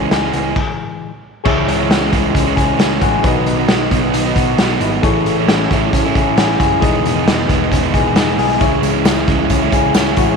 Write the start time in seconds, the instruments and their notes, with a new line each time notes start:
Already playing: clean electric guitar E3 G#3 C#4 G#4
0.00 overdriven electric guitar E3 G#3 C#4
0.11 picked electric bass C#2, clean electric guitar G#4, snare, closed hi-hat
0.22 overdriven electric guitar E3 G#3 C#4
0.33 picked electric bass C#2, clean electric guitar B3, closed hi-hat
0.44 clean electric guitar C#4
0.56 kick, crash
1.44 picked electric bass C#2, overdriven electric guitar C#3 E3 G#3, clean electric guitar E3, synth keys G#4 C#5 E5, kick, crash
1.48 overdriven electric guitar C#4
1.67 picked electric bass C#2, clean electric guitar G#3, closed hi-hat
1.78 overdriven electric guitar C#3 E3 G#3 C#4
1.90 picked electric bass C#2, clean electric guitar B3, snare, closed hi-hat
2.01 clean electric guitar C#4
2.12 picked electric bass C#2, overdriven electric guitar C#3 E3 G#3 C#4, clean electric guitar G#3, kick, closed hi-hat
2.35 picked electric bass C#2, clean electric guitar C#4, kick, closed hi-hat
2.46 overdriven electric guitar C#3 E3 G#3 C#4
2.56 picked electric bass C#2, clean electric guitar G#4, kick, closed hi-hat
2.79 picked electric bass C#2, overdriven electric guitar C#3 E3 G#3 C#4, clean electric guitar C#4, snare, closed hi-hat
3.01 picked electric bass A1, synth keys G#4 C#5 F#5, clean electric guitar G#4, kick, closed hi-hat
3.23 picked electric bass B1, overdriven electric guitar B2 F#3 B3, clean electric guitar D#3, synth keys F#4 B4 D#5, kick, closed hi-hat
3.27 overdriven electric guitar D#4
3.46 picked electric bass B1, clean electric guitar B3, closed hi-hat
3.58 overdriven electric guitar B2 F#3 B3 D#4
3.69 picked electric bass B1, clean electric guitar D#4, snare, closed hi-hat
3.91 picked electric bass B1, overdriven electric guitar B2 F#3 B3 D#4, clean electric guitar B3, kick, closed hi-hat
4.14 picked electric bass B1, clean electric guitar D#4, closed hi-hat
4.25 overdriven electric guitar B2 F#3 B3 D#4
4.36 picked electric bass B1, clean electric guitar F#4, kick, closed hi-hat
4.58 picked electric bass B1, overdriven electric guitar B2 F#3 B3, clean electric guitar D#4, snare, closed hi-hat
4.63 overdriven electric guitar D#4
4.80 picked electric bass G#1, clean electric guitar E4, closed hi-hat
4.92 clean electric guitar F#4
5.02 picked electric bass A1, overdriven electric guitar A2 E3 C#4, clean electric guitar E3, synth keys G#4 A4 C#5, kick, closed hi-hat
5.07 overdriven electric guitar E4
5.25 picked electric bass A1, clean electric guitar A3, closed hi-hat
5.38 overdriven electric guitar A2 E3 C#4 E4
5.47 picked electric bass A1, clean electric guitar C#4, snare, closed hi-hat
5.70 picked electric bass A1, overdriven electric guitar A2 E3 C#4 E4, clean electric guitar A3, kick, snare, closed hi-hat
5.93 picked electric bass A1, clean electric guitar C#4, kick, closed hi-hat
6.05 overdriven electric guitar A2 E3 C#4 E4
6.15 picked electric bass A1, clean electric guitar G#4, kick, closed hi-hat
6.36 picked electric bass A1, overdriven electric guitar E3 C#4 E4, clean electric guitar C#4, snare, closed hi-hat
6.59 picked electric bass F#1, clean electric guitar G#4, kick, closed hi-hat
6.80 picked electric bass E1, clean electric guitar D#3, synth keys E3 G#4 D#5, overdriven electric guitar E3 G#3 B3 D#4, kick, closed hi-hat
7.04 picked electric bass E1, clean electric guitar B3, closed hi-hat
7.14 overdriven electric guitar E3 G#3 B3 D#4
7.26 picked electric bass E1, clean electric guitar D#4, snare, closed hi-hat
7.48 picked electric bass E1, overdriven electric guitar E3 G#3 B3 D#4, clean electric guitar B3, kick, closed hi-hat
7.71 picked electric bass E1, clean electric guitar C#4, kick, closed hi-hat
7.81 overdriven electric guitar E3 G#3 B3 D#4, clean electric guitar D#4
7.94 picked electric bass E1, clean electric guitar G#4, kick, closed hi-hat
8.14 picked electric bass E1, overdriven electric guitar E3 G#3 B3 D#4, clean electric guitar D#4, snare, closed hi-hat
8.37 picked electric bass B1, clean electric guitar G#4, open hi-hat
8.60 picked electric bass C#2, overdriven electric guitar C#3 G#3 C#4 E4, clean electric guitar E3, synth keys E4 G#4 C#5, kick, closed hi-hat, tambourine
8.82 picked electric bass C#2, clean electric guitar G#3, closed hi-hat, tambourine
8.93 overdriven electric guitar C#3 G#3 C#4 E4
9.05 picked electric bass C#2, clean electric guitar C#4, snare, closed hi-hat, tambourine
9.28 picked electric bass C#2, overdriven electric guitar C#3 G#3 C#4 E4, clean electric guitar G#3, kick, snare, closed hi-hat
9.50 picked electric bass C#2, clean electric guitar C#4, kick, closed hi-hat, tambourine
9.62 overdriven electric guitar C#3 G#3 C#4 E4
9.72 picked electric bass C#2, clean electric guitar G#4, kick, closed hi-hat, tambourine
9.94 picked electric bass C#2, overdriven electric guitar C#3 G#3 C#4, clean electric guitar C#4, snare, closed hi-hat, tambourine
9.99 overdriven electric guitar E4
10.16 picked electric bass A1, synth keys E4 G#4 C#5, clean electric guitar F#4, kick, closed hi-hat, tambourine
10.29 clean electric guitar G#4